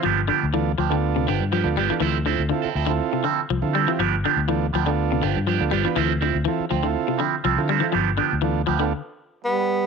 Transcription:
<<
  \new Staff \with { instrumentName = "Transistor combo organ" } { \time 4/4 \key g \mixolydian \tempo 4 = 122 r4 <b d' f' a'>16 r8 <b d' f' a'>8. r8. <b d' f' a'>16 r16 <b d' f' a'>16 | r4 <c' e' f' a'>16 r8 <c' e' f' a'>8. r8. <c' e' f' a'>16 r16 <c' e' f' g'>16 | r4 <b d' f' a'>16 r8 <b d' f' a'>8. r8. <b d' f' a'>16 r16 <b d' f' b'>16 | r4 <c' e' f' a'>16 r8 <c' e' f' a'>8. r8. <c' e' f' a'>16 r16 <c' e' f' a'>16 |
r4 <b d' f' a'>16 r8 <b d' f' a'>16 r2 | }
  \new Staff \with { instrumentName = "Clean electric guitar" } { \time 4/4 \key g \mixolydian <f b d' g'>16 r16 <f b d' g'>16 r8. <f d' g'>16 r8. <f b d' g'>16 r16 <f b d' g'>16 r16 <f b d' g'>16 r16 | <f c' e' a'>16 r16 <f c' e' a'>16 r8 <c' e' a'>16 <f c' e' a'>16 r8. <f c' e' a'>16 r8. <f c' e' a'>16 r16 | <f b d' g'>16 r16 <f b d' g'>16 r8. <f b d' g'>16 r8. <f b d' g'>16 r16 <f b d' g'>16 r16 <f b d' g'>16 r16 | <f c' e' a'>16 r16 <f c' e'>16 r8. <f c'>16 r8. <f c' e'>16 r16 <f c' e' a'>16 r16 <f c' e' a'>16 r16 |
<f b d' g'>16 r16 <f b d' g'>16 r8. <f b d' g'>16 r2 r16 | }
  \new Staff \with { instrumentName = "Tenor saxophone" } { \time 4/4 \key g \mixolydian r1 | r1 | r1 | r1 |
r2. b4 | }
  \new Staff \with { instrumentName = "Trombone" } { \clef bass \time 4/4 \key g \mixolydian r1 | r1 | r1 | r1 |
r2. g4 | }
  \new Staff \with { instrumentName = "Clean electric guitar" } { \clef bass \time 4/4 \key g \mixolydian f8 d8 e8 f16 d8 c16 d8 f8 g16 e16 | e8 d8 d8 r16 d8 c16 d8 f8 g16 e16 | f8 d8 e8 f16 d8 c16 d8 f8 g16 e16 | e8 d8 e8 f16 d8 c16 d8 f8 g16 e16 |
f8 d8 e8 f16 d8 r4. r16 | }
  \new Staff \with { instrumentName = "Fingered electric bass" } { \clef bass \time 4/4 \key g \mixolydian g,,8 r16 d,8. d,4 g,,16 g,8 d,16 g,,16 r16 | d,8. d,16 r8 d,8 r4 c,16 d8 r16 | g,,8 r16 d,8. d,4 g,,16 g,8 d,16 g,,16 r16 | d,8. d,16 r8 d,8 r4 c,16 d8 r16 |
g,,8 r16 d,8. d,8 r2 | }
>>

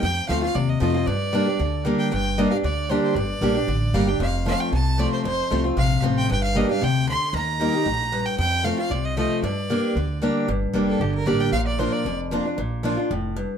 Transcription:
<<
  \new Staff \with { instrumentName = "Fiddle" } { \time 4/4 \key g \minor \tempo 4 = 230 g''4 f''8 f''8 d''8 ees''8 ees''4 | d''2. r8 g''8 | g''4 ees''8 f''8 d''4 c''8 c''8 | d''2. f''8 g''8 |
f''4 f''8 g''8 a''4 d''8 c''8 | c''4. r8 f''4 r8 g''8 | g''8 f''8 ees''8 f''8 g''4 c'''4 | bes''2.~ bes''8 g''8 |
g''4 f''8 f''8 d''8 ees''8 ees''4 | d''2. r4 | r4. a'8 g'8 bes'8 d''8 g''8 | f''8 d''8 c''8 d''4 r4. |
r1 | }
  \new Staff \with { instrumentName = "Steel-string acoustic guitar" } { \time 4/4 \key g \minor << { r4 <f a c' f'>8 <c' f'>8 r4 <f a c' f'>8 <c' f'>8 | r4 <g bes d' g'>8 <d' g'>8 r4 <g bes d' g'>4 | r4 <g bes d' g'>8 <d' g'>8 r4 <g bes d' g'>4 | r4 <g bes d' g'>8 <d' g'>8 r4 <g bes d' g'>8 <d' g'>8 |
r4 <f a c' f'>4 r4 <f a c' f'>4 | r4 <f a c' f'>8 <c' f'>8 r4 <f a c' f'>4 | r4 <g bes d' g'>8 <d' g'>8 r2 | r4 <g bes ees' g'>8 <ees' g'>8 r2 |
r4 <f a c' f'>8 <c' f'>8 r4 <f a c' f'>4 | r4 <g bes d' g'>4 r4 <g bes d' g'>4 | r4 <g bes d' g'>4 r4 <g bes d' g'>4 | r4 <f bes d' f'>4 r4 <f bes d' f'>8 <d' f'>8 |
r4 <f bes d' f'>8 <d' f'>8 r2 | } \\ { f,2 c2 | g,2 d2 | g,2 d2 | g,2 d2 |
f,2 c2 | f,2 c2 | g,2 c4 d4 | ees2 a,4 g,4 |
f,2 c2 | g,2 d2 | g,2 d2 | bes,2 f,2 |
bes,2 a,4 g,4 | } >> }
  \new Staff \with { instrumentName = "Upright bass" } { \clef bass \time 4/4 \key g \minor f,4 d,4 ees,4 f,4 | g,2 d,2 | g,,2 d,2 | g,,4 bes,,4 a,,4 g,,4 |
f,,2 c,2 | f,,4 c,4 bes,,4 a,,4 | g,,2 d,2 | ees,2 bes,,2 |
f,2 c,2 | g,2 d,2 | g,,4 f,,4 g,,4 a,,4 | bes,,2 f,,2 |
bes,,2 f,,2 | }
>>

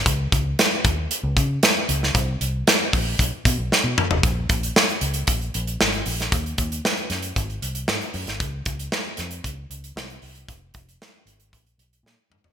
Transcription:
<<
  \new Staff \with { instrumentName = "Fingered electric bass" } { \clef bass \time 4/4 \key bes \minor \tempo 4 = 115 des,8 des,8 r8 ees,8 r16 des,16 des8 r8 des,8 | c,8 c,8 r8 bes,,8 ces,16 r16 ces16 ces,16 r16 ces16 r16 f,,16 | bes,,8 bes,,8 r8 des,8 bes,,8 bes,,8 aes,,8 bes,,8 | ees,8 ees,8 r8 ges,8 aes,,8 c,8 aes,16 r16 ges,16 aes,,16 |
des,8 des,8 r8 f,8 des,8 des,8 c,8 c,8 | f,,8 f,,8 r8 aes,,8 bes,,8 ces,8 bes,16 r16 aes,16 f,,16 | }
  \new DrumStaff \with { instrumentName = "Drums" } \drummode { \time 4/4 <hh bd>8 <hh bd>8 <hh sn>8 <hh bd>8 hh8 <hh bd>8 <hh sn>8 hh16 sn16 | <hh bd>8 hh8 <hh sn>8 <hho bd>8 <hh bd>8 <hh bd>8 sn8 toml16 tomfh16 | <hh bd>8 <hh bd>16 hh16 sn16 hh16 hh16 hh16 <hh bd>16 hh16 hh16 hh16 sn16 hh16 hho16 <hh sn>16 | <hh bd>16 hh16 <hh bd>16 hh16 sn16 hh16 <hh sn>16 hh16 <hh bd>16 hh16 hh16 hh16 sn16 hh16 hho16 <hh sn>16 |
<hh bd>8 <hh bd>16 hh16 sn8 <hh sn>16 hh16 <hh bd>8 hh16 hh16 sn16 hh16 hho16 hh16 | <hh bd>8 <hh bd>16 hh16 sn8 hh16 hh16 <hh bd>16 hh16 hh16 hh16 sn8 toml16 tomfh16 | }
>>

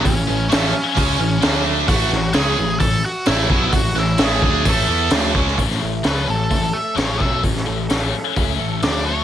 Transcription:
<<
  \new Staff \with { instrumentName = "Lead electric guitar" } { \time 4/4 \key a \major \tempo 4 = 130 <cis' cis''>4 <cis' cis''>2~ <cis' cis''>8 r8 | <fis' fis''>4 <gis' gis''>4 <a' a''>8 <fis' fis''>8 <e' e''>4 | <fis' fis''>8 <e' e''>8 <gis' gis''>4 <a' a''>4 r4 | r4 b'8 a'4 e''8 cis''8 e''8 |
r2. d''8 cis''8 | }
  \new Staff \with { instrumentName = "Clean electric guitar" } { \time 4/4 \key a \major r1 | r1 | r1 | a,8 a8 a'8 cis'8 a8 a'8 cis'8 a'8 |
a,8 a8 a'8 cis'8 a8 a'8 d8 a'8 | }
  \new Staff \with { instrumentName = "Distorted electric guitar" } { \clef bass \time 4/4 \key a \major <a, e>8 <a, e>8 <a, e a>8 r8 <cis gis cis'>8 <a, e>8 <d a d'>4 | <a, e a>8 <a, e>8 <cis gis cis'>8 <a, e>8 <a, e>8 r8 <a, e a>8 <b, fis b>8 | <a, e>8 <a, e>8 <a, e a>8 <d a d'>8 <a, e a>8 <e b e'>8 <d a d'>8 <cis gis cis'>8 | <a, e a>8 <a, e>8 <cis gis cis'>8 <a, e>8 <a, e>8 r8 <a, e a>8 <b, fis b>8 |
<a, e>8 <a, e>8 <a, e a>8 r8 <cis gis cis'>8 <a, e>8 <d a d'>4 | }
  \new Staff \with { instrumentName = "Overdriven electric guitar" } { \clef bass \time 4/4 \key a \major <a, e>8 <a, e>8 <a, e a>8 r8 <cis gis cis'>8 <a, e>8 <d a d'>4 | <a, e a>8 <a, e>8 <cis gis cis'>8 <a, e>8 <a, e>8 r8 <a, e a>8 <b, fis b>8 | <a, e>8 <a, e>8 <a, e a>8 <d a d'>8 <a, e a>8 <e b e'>8 <d a d'>8 <cis gis cis'>8 | r1 |
r1 | }
  \new Staff \with { instrumentName = "Picked electric bass" } { \clef bass \time 4/4 \key a \major a,,8 a,,8 a,,8 r8 cis,8 a,,8 d,4 | a,,8 a,,8 cis,8 a,,8 a,,8 r8 a,,8 b,,8 | a,,8 a,,8 a,,8 d,8 a,,8 e,8 d,8 cis,8 | a,,8 a,,8 cis,8 a,,8 a,,8 r8 a,,8 b,,8 |
a,,8 a,,8 a,,8 r8 cis,8 a,,8 d,4 | }
  \new DrumStaff \with { instrumentName = "Drums" } \drummode { \time 4/4 <hho bd>4 <hho sn>4 <hho bd>4 <hho sn>4 | <hho bd>8 sn8 <hho sn>4 <hho bd>4 <hho sn>8 bd8 | <hho bd>8 sn8 <hho sn>8 bd8 <hho bd>4 <hho sn>8 bd16 sn16 | <hho bd>16 sn8. <hho sn>4 <hho bd>4 <hho sn>8 <bd sn>8 |
<hho bd>16 sn8. <hho sn>4 <hho bd>4 <hho sn>4 | }
>>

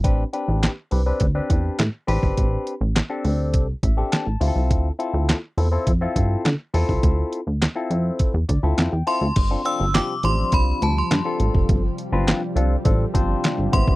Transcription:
<<
  \new Staff \with { instrumentName = "Synth bell" } { \time 4/4 \key g \mixolydian \tempo 4 = 103 r1 | r1 | r1 | r2. r8 c'''8~ |
c'''8 e'''8 d'''8 c'''8 b''8 a''16 c'''8. r8 | r2. r8 c'''8 | }
  \new Staff \with { instrumentName = "Tine electric piano" } { \time 4/4 \key g \mixolydian << { r1 | r2 r8 e''8 a''4 | r1 | r2 r8 d''16 e''16 g''8 a''8 |
r1 | r1 | } \\ { <c' d' g' b'>16 r16 <c' d' g' b'>8. r16 <c' d' g' b'>16 <c' d' g' b'>16 r16 <c' d' g' b'>8. r8 <c' d' g' b'>8~ | <c' d' g' b'>8 r8. <c' d' g' a'>4 r8 <c' d' g' a'>8 r16 <c' e' f' g' a'>8~ | <c' e' f' g' a'>16 r16 <c' e' f' a'>8. r16 <c' e' f' a'>16 <c' e' f' a'>16 r16 <c' e' f' a'>8. r8 <c' e' f' a'>8~ | <c' e' f' a'>8 r8. <c' e' f' a'>4 r8 <c' e' f' a'>8 r16 <c' e' f' a'>16 r16 |
r16 <c' d' f' a'>16 <c' d' f' a'>16 r16 <c' d' f' g'>16 r16 <c' d' f' g'>4 r8. <c' d' f' a'>8.~ | <c' d' f' a'>16 r8 <c' d' f' b'>8 r16 <c' d' f' a'>16 r16 <c' d' f' a'>16 r16 <c' d' f' c''>4 <b c' e' g'>8 | } >> }
  \new Staff \with { instrumentName = "Analog synth pad" } { \clef bass \time 4/4 \key g \mixolydian << { r1 | r1 | r1 | r1 |
<f g>1~ | <f g>2.~ <f g>8 a8 | } \\ { r1 | r1 | r1 | r1 |
c1~ | c1 | } >> }
  \new Staff \with { instrumentName = "Analog synth bass" } { \clef bass \time 4/4 \key g \mixolydian a,,8 r16 a,,8 r16 c,8 d,8 e,8 a,16 r16 a,,16 g,,16 | a,,8 r16 a,,8 r16 d,8 c,8 a,,8 r16 a,,16 d,16 c,16 | d,8 r16 d,8 r16 e,8 f,8 g,8 d16 r16 e,16 c,16 | d,8 r16 d,8 r16 f,8 r16 e,16 d,16 d,16 f,16 e,16 r16 d,16 |
g,,8 r16 g,,8 r16 a,,8 c,8 d,8 g,16 r16 a,,16 f,,16 | g,,8 r16 g,,8 r16 c,8 a,,8 g,,8 r16 g,,16 a,,16 g,,16 | }
  \new DrumStaff \with { instrumentName = "Drums" } \drummode { \time 4/4 <hh bd>8 hh8 <hc hh sn>8 hho8 <hh bd>8 <hh bd>8 <hc hh sn>8 hho16 bd16 | <hh bd>8 hh8 <hc hh sn>8 hho8 <hh bd>8 <hh bd>8 <hc hh sn>8 hho8 | <hh bd>8 hh8 <hc hh sn>8 hho8 <hh bd>8 <hh bd>8 <hc hh sn>8 hho16 bd16 | <hh bd>8 hh8 <hc hh sn>8 hh8 <hh bd>8 <hh bd>8 <hc hh sn>8 hho8 |
<cymc hh bd>8 hh8 <hc hh sn>8 hh8 <hh bd>8 hh8 <hc hh sn>8 hh16 bd16 | <hh bd>8 hh8 <hc hh sn>8 hh8 <hh bd>8 <hh bd>8 <hc hh sn>8 <hh bd>16 bd16 | }
>>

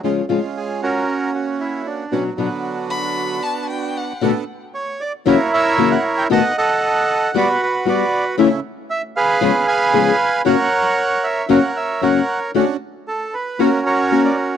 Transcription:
<<
  \new Staff \with { instrumentName = "Violin" } { \time 4/4 \key fis \phrygian \tempo 4 = 115 r1 | r4. b''4 a''8 g''8 fis''8 | r1 | r1 |
r1 | r1 | r1 | }
  \new Staff \with { instrumentName = "Bandoneon" } { \time 4/4 \key fis \phrygian << { r4 gis'8 ais'4 fis'8 e'8 d'8 | cis'8 b4 r2 r8 | r4 cis''8 d''8 cis''8 e''8. fis''8 g''16 | a''8 fis''4. d''8 b'8 d''8. r16 |
r4 e''8 eis''4 gis''4. | fis''4. e''8 fis''8 e''8 fis''8. r16 | r4 a'8 b'8 ais'8 cis''8. d''8 r16 | } \\ { r4. <cis' fis'>2 r8 | fis8 <d fis>2 r4. | r2 <e' ais'>8 <ais' cis''>4. | <dis'' fis''>8 <a' dis''>4. <fis' b'>4 <fis' b'>4 |
r4. <gis' b'>4 <b' eis''>4. | <ais' cis''>2 <ais' cis''>4 <ais' cis''>4 | r2 <cis' fis'>8 <fis' ais'>4. | } >> }
  \new Staff \with { instrumentName = "Bandoneon" } { \time 4/4 \key fis \phrygian <gis cis' eis'>8 <gis cis' eis'>4. <ais cis' fis'>2 | <b d' fis'>8 <b d' fis'>2.~ <b d' fis'>8 | <b d' a'>8 r4. <ais e' fis'>8 r8 <ais e' fis'>8 r8 | <a b dis'>8 r4. <g b fis'>8 r8 <g b fis'>8 r8 |
<cis a cis' e'>8 r4. <b cis' eis'>8 r8 <b cis' eis'>8 r8 | <ais cis' fis'>8 r4. <ais cis' fis'>8 r8 <ais cis' fis'>8 r8 | <cis' d' fis'>8 r4. <ais cis' fis'>8 r8 <ais cis' fis'>8 r8 | }
  \new Staff \with { instrumentName = "Nylon-string guitar" } { \time 4/4 \key fis \phrygian <cis eis gis cis' eis'>8 <cis eis gis cis' eis'>8 r2. | <b, fis b d' fis'>8 <b, fis b d' fis'>8 r2. | <b, d a b fis'>8 r4. <fis, cis e ais cis' fis'>8 r8 <fis, cis e ais cis' fis'>8 r8 | <b, dis a b fis'>8 r4. <g b fis'>8 r8 <g b fis'>8 r8 |
<cis e a cis' e'>8 r4. <cis eis gis b gis'>8 r8 <cis eis gis b gis'>8 r8 | <fis, cis fis ais cis' fis'>8 r4. <fis, cis fis ais cis' fis'>8 r8 <fis, cis fis ais cis' fis'>8 r8 | <d a cis' fis'>8 r4. <ais cis' fis'>8 r8 <ais cis' fis'>8 r8 | }
>>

